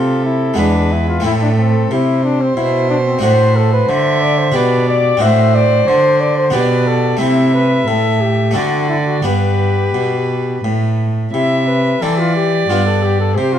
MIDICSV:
0, 0, Header, 1, 5, 480
1, 0, Start_track
1, 0, Tempo, 663717
1, 904, Time_signature, 3, 2, 24, 8
1, 5698, Tempo, 685714
1, 9694, End_track
2, 0, Start_track
2, 0, Title_t, "Violin"
2, 0, Program_c, 0, 40
2, 0, Note_on_c, 0, 69, 52
2, 426, Note_on_c, 0, 71, 48
2, 436, Note_off_c, 0, 69, 0
2, 899, Note_off_c, 0, 71, 0
2, 903, Note_on_c, 0, 69, 50
2, 1388, Note_on_c, 0, 72, 62
2, 1399, Note_off_c, 0, 69, 0
2, 2815, Note_on_c, 0, 76, 69
2, 2826, Note_off_c, 0, 72, 0
2, 3295, Note_on_c, 0, 74, 52
2, 3306, Note_off_c, 0, 76, 0
2, 3771, Note_off_c, 0, 74, 0
2, 3775, Note_on_c, 0, 72, 68
2, 4716, Note_off_c, 0, 72, 0
2, 4737, Note_on_c, 0, 74, 53
2, 5205, Note_off_c, 0, 74, 0
2, 5215, Note_on_c, 0, 76, 63
2, 6156, Note_off_c, 0, 76, 0
2, 6177, Note_on_c, 0, 74, 48
2, 6657, Note_on_c, 0, 71, 53
2, 6667, Note_off_c, 0, 74, 0
2, 7874, Note_off_c, 0, 71, 0
2, 8116, Note_on_c, 0, 76, 60
2, 8595, Note_on_c, 0, 74, 62
2, 8605, Note_off_c, 0, 76, 0
2, 9538, Note_off_c, 0, 74, 0
2, 9542, Note_on_c, 0, 72, 56
2, 9694, Note_off_c, 0, 72, 0
2, 9694, End_track
3, 0, Start_track
3, 0, Title_t, "Trumpet"
3, 0, Program_c, 1, 56
3, 0, Note_on_c, 1, 65, 54
3, 172, Note_off_c, 1, 65, 0
3, 177, Note_on_c, 1, 64, 61
3, 414, Note_off_c, 1, 64, 0
3, 418, Note_on_c, 1, 62, 64
3, 666, Note_on_c, 1, 64, 64
3, 677, Note_off_c, 1, 62, 0
3, 785, Note_off_c, 1, 64, 0
3, 789, Note_on_c, 1, 65, 60
3, 904, Note_off_c, 1, 65, 0
3, 908, Note_on_c, 1, 64, 68
3, 961, Note_off_c, 1, 64, 0
3, 1028, Note_on_c, 1, 62, 63
3, 1081, Note_off_c, 1, 62, 0
3, 1147, Note_on_c, 1, 60, 61
3, 1381, Note_off_c, 1, 60, 0
3, 1388, Note_on_c, 1, 64, 64
3, 1620, Note_off_c, 1, 64, 0
3, 1624, Note_on_c, 1, 62, 66
3, 1742, Note_on_c, 1, 60, 59
3, 1753, Note_off_c, 1, 62, 0
3, 1850, Note_off_c, 1, 60, 0
3, 1855, Note_on_c, 1, 64, 67
3, 2090, Note_off_c, 1, 64, 0
3, 2097, Note_on_c, 1, 62, 70
3, 2151, Note_off_c, 1, 62, 0
3, 2218, Note_on_c, 1, 60, 62
3, 2335, Note_off_c, 1, 60, 0
3, 2341, Note_on_c, 1, 72, 71
3, 2576, Note_on_c, 1, 69, 71
3, 2586, Note_off_c, 1, 72, 0
3, 2694, Note_off_c, 1, 69, 0
3, 2697, Note_on_c, 1, 71, 69
3, 2813, Note_on_c, 1, 72, 73
3, 2824, Note_off_c, 1, 71, 0
3, 3052, Note_on_c, 1, 74, 68
3, 3062, Note_off_c, 1, 72, 0
3, 3170, Note_on_c, 1, 72, 64
3, 3180, Note_off_c, 1, 74, 0
3, 3290, Note_on_c, 1, 71, 71
3, 3301, Note_off_c, 1, 72, 0
3, 3530, Note_off_c, 1, 71, 0
3, 3533, Note_on_c, 1, 74, 74
3, 3771, Note_on_c, 1, 76, 80
3, 3782, Note_off_c, 1, 74, 0
3, 4013, Note_on_c, 1, 74, 75
3, 4024, Note_off_c, 1, 76, 0
3, 4251, Note_on_c, 1, 72, 79
3, 4262, Note_off_c, 1, 74, 0
3, 4488, Note_on_c, 1, 74, 71
3, 4499, Note_off_c, 1, 72, 0
3, 4606, Note_off_c, 1, 74, 0
3, 4610, Note_on_c, 1, 72, 66
3, 4729, Note_on_c, 1, 71, 70
3, 4740, Note_off_c, 1, 72, 0
3, 4971, Note_on_c, 1, 69, 71
3, 4982, Note_off_c, 1, 71, 0
3, 5206, Note_off_c, 1, 69, 0
3, 5210, Note_on_c, 1, 64, 67
3, 5448, Note_off_c, 1, 64, 0
3, 5454, Note_on_c, 1, 71, 71
3, 5696, Note_on_c, 1, 69, 62
3, 5706, Note_off_c, 1, 71, 0
3, 5931, Note_on_c, 1, 67, 60
3, 5941, Note_off_c, 1, 69, 0
3, 6168, Note_on_c, 1, 66, 60
3, 6178, Note_off_c, 1, 67, 0
3, 6401, Note_off_c, 1, 66, 0
3, 6405, Note_on_c, 1, 64, 60
3, 6462, Note_off_c, 1, 64, 0
3, 6531, Note_on_c, 1, 66, 59
3, 6645, Note_off_c, 1, 66, 0
3, 6649, Note_on_c, 1, 67, 69
3, 7607, Note_off_c, 1, 67, 0
3, 8116, Note_on_c, 1, 64, 61
3, 8339, Note_off_c, 1, 64, 0
3, 8353, Note_on_c, 1, 71, 59
3, 8594, Note_on_c, 1, 69, 58
3, 8605, Note_off_c, 1, 71, 0
3, 8715, Note_on_c, 1, 65, 57
3, 8725, Note_off_c, 1, 69, 0
3, 8827, Note_off_c, 1, 65, 0
3, 8831, Note_on_c, 1, 67, 64
3, 9068, Note_on_c, 1, 65, 70
3, 9078, Note_off_c, 1, 67, 0
3, 9184, Note_off_c, 1, 65, 0
3, 9188, Note_on_c, 1, 69, 59
3, 9305, Note_on_c, 1, 67, 67
3, 9316, Note_off_c, 1, 69, 0
3, 9420, Note_off_c, 1, 67, 0
3, 9424, Note_on_c, 1, 69, 64
3, 9533, Note_on_c, 1, 67, 73
3, 9544, Note_off_c, 1, 69, 0
3, 9655, Note_on_c, 1, 65, 65
3, 9665, Note_off_c, 1, 67, 0
3, 9694, Note_off_c, 1, 65, 0
3, 9694, End_track
4, 0, Start_track
4, 0, Title_t, "Harpsichord"
4, 0, Program_c, 2, 6
4, 0, Note_on_c, 2, 48, 39
4, 0, Note_on_c, 2, 57, 37
4, 0, Note_on_c, 2, 60, 36
4, 0, Note_on_c, 2, 64, 37
4, 378, Note_off_c, 2, 57, 0
4, 384, Note_off_c, 2, 60, 0
4, 389, Note_off_c, 2, 64, 0
4, 389, Note_on_c, 2, 56, 36
4, 393, Note_off_c, 2, 48, 0
4, 400, Note_on_c, 2, 59, 38
4, 411, Note_on_c, 2, 64, 38
4, 422, Note_on_c, 2, 40, 40
4, 870, Note_on_c, 2, 57, 35
4, 872, Note_off_c, 2, 56, 0
4, 874, Note_off_c, 2, 40, 0
4, 878, Note_off_c, 2, 59, 0
4, 879, Note_on_c, 2, 60, 40
4, 881, Note_off_c, 2, 64, 0
4, 890, Note_on_c, 2, 64, 39
4, 902, Note_on_c, 2, 45, 41
4, 1355, Note_off_c, 2, 45, 0
4, 1382, Note_on_c, 2, 48, 46
4, 1830, Note_off_c, 2, 48, 0
4, 1859, Note_on_c, 2, 47, 40
4, 2290, Note_off_c, 2, 57, 0
4, 2295, Note_off_c, 2, 60, 0
4, 2300, Note_off_c, 2, 64, 0
4, 2305, Note_on_c, 2, 57, 38
4, 2307, Note_off_c, 2, 47, 0
4, 2319, Note_on_c, 2, 62, 40
4, 2330, Note_on_c, 2, 66, 39
4, 2340, Note_on_c, 2, 45, 43
4, 2785, Note_off_c, 2, 45, 0
4, 2812, Note_on_c, 2, 50, 43
4, 3246, Note_off_c, 2, 57, 0
4, 3252, Note_off_c, 2, 62, 0
4, 3258, Note_off_c, 2, 66, 0
4, 3261, Note_off_c, 2, 50, 0
4, 3267, Note_on_c, 2, 62, 43
4, 3279, Note_on_c, 2, 67, 41
4, 3290, Note_on_c, 2, 47, 44
4, 3740, Note_on_c, 2, 60, 39
4, 3742, Note_off_c, 2, 62, 0
4, 3743, Note_off_c, 2, 47, 0
4, 3751, Note_on_c, 2, 62, 42
4, 3752, Note_off_c, 2, 67, 0
4, 3761, Note_on_c, 2, 66, 40
4, 3772, Note_on_c, 2, 45, 46
4, 4224, Note_off_c, 2, 45, 0
4, 4255, Note_on_c, 2, 50, 45
4, 4689, Note_off_c, 2, 60, 0
4, 4694, Note_off_c, 2, 62, 0
4, 4699, Note_off_c, 2, 66, 0
4, 4704, Note_on_c, 2, 59, 42
4, 4705, Note_off_c, 2, 50, 0
4, 4713, Note_on_c, 2, 62, 42
4, 4723, Note_on_c, 2, 67, 42
4, 4735, Note_on_c, 2, 47, 47
4, 5183, Note_off_c, 2, 59, 0
4, 5184, Note_on_c, 2, 57, 37
4, 5185, Note_off_c, 2, 47, 0
4, 5188, Note_off_c, 2, 62, 0
4, 5193, Note_off_c, 2, 67, 0
4, 5195, Note_on_c, 2, 60, 37
4, 5206, Note_on_c, 2, 64, 39
4, 5217, Note_on_c, 2, 48, 41
4, 5671, Note_off_c, 2, 48, 0
4, 5698, Note_on_c, 2, 45, 44
4, 6132, Note_off_c, 2, 57, 0
4, 6137, Note_off_c, 2, 60, 0
4, 6140, Note_on_c, 2, 57, 33
4, 6143, Note_off_c, 2, 64, 0
4, 6146, Note_off_c, 2, 45, 0
4, 6151, Note_on_c, 2, 60, 35
4, 6160, Note_on_c, 2, 62, 37
4, 6171, Note_on_c, 2, 50, 39
4, 6627, Note_off_c, 2, 57, 0
4, 6629, Note_off_c, 2, 50, 0
4, 6632, Note_off_c, 2, 60, 0
4, 6637, Note_off_c, 2, 62, 0
4, 6641, Note_on_c, 2, 59, 36
4, 6650, Note_on_c, 2, 62, 35
4, 6661, Note_on_c, 2, 43, 39
4, 7118, Note_off_c, 2, 43, 0
4, 7144, Note_on_c, 2, 47, 38
4, 7603, Note_off_c, 2, 47, 0
4, 7634, Note_on_c, 2, 45, 36
4, 8080, Note_off_c, 2, 59, 0
4, 8085, Note_off_c, 2, 62, 0
4, 8090, Note_off_c, 2, 45, 0
4, 8121, Note_on_c, 2, 48, 39
4, 8569, Note_off_c, 2, 48, 0
4, 8600, Note_on_c, 2, 52, 40
4, 8600, Note_on_c, 2, 60, 32
4, 8604, Note_on_c, 2, 64, 35
4, 8940, Note_off_c, 2, 60, 0
4, 8942, Note_off_c, 2, 64, 0
4, 9043, Note_off_c, 2, 52, 0
4, 9071, Note_on_c, 2, 43, 38
4, 9075, Note_on_c, 2, 59, 32
4, 9080, Note_on_c, 2, 62, 31
4, 9515, Note_off_c, 2, 43, 0
4, 9517, Note_off_c, 2, 59, 0
4, 9520, Note_off_c, 2, 62, 0
4, 9548, Note_on_c, 2, 48, 40
4, 9694, Note_off_c, 2, 48, 0
4, 9694, End_track
5, 0, Start_track
5, 0, Title_t, "Cello"
5, 0, Program_c, 3, 42
5, 0, Note_on_c, 3, 48, 52
5, 410, Note_off_c, 3, 48, 0
5, 417, Note_on_c, 3, 40, 53
5, 892, Note_off_c, 3, 40, 0
5, 902, Note_on_c, 3, 45, 62
5, 1374, Note_off_c, 3, 45, 0
5, 1381, Note_on_c, 3, 48, 51
5, 1849, Note_off_c, 3, 48, 0
5, 1862, Note_on_c, 3, 47, 58
5, 2328, Note_off_c, 3, 47, 0
5, 2337, Note_on_c, 3, 45, 63
5, 2803, Note_off_c, 3, 45, 0
5, 2812, Note_on_c, 3, 50, 57
5, 3281, Note_off_c, 3, 50, 0
5, 3287, Note_on_c, 3, 47, 65
5, 3760, Note_off_c, 3, 47, 0
5, 3771, Note_on_c, 3, 45, 62
5, 4243, Note_off_c, 3, 45, 0
5, 4250, Note_on_c, 3, 50, 54
5, 4722, Note_off_c, 3, 50, 0
5, 4732, Note_on_c, 3, 47, 64
5, 5202, Note_off_c, 3, 47, 0
5, 5211, Note_on_c, 3, 48, 61
5, 5687, Note_off_c, 3, 48, 0
5, 5697, Note_on_c, 3, 45, 53
5, 6170, Note_on_c, 3, 50, 55
5, 6181, Note_off_c, 3, 45, 0
5, 6653, Note_off_c, 3, 50, 0
5, 6657, Note_on_c, 3, 43, 54
5, 7135, Note_off_c, 3, 43, 0
5, 7146, Note_on_c, 3, 47, 44
5, 7622, Note_off_c, 3, 47, 0
5, 7631, Note_on_c, 3, 45, 54
5, 8107, Note_off_c, 3, 45, 0
5, 8117, Note_on_c, 3, 48, 51
5, 8567, Note_off_c, 3, 48, 0
5, 8593, Note_on_c, 3, 52, 50
5, 9058, Note_off_c, 3, 52, 0
5, 9069, Note_on_c, 3, 43, 52
5, 9543, Note_on_c, 3, 48, 57
5, 9553, Note_off_c, 3, 43, 0
5, 9694, Note_off_c, 3, 48, 0
5, 9694, End_track
0, 0, End_of_file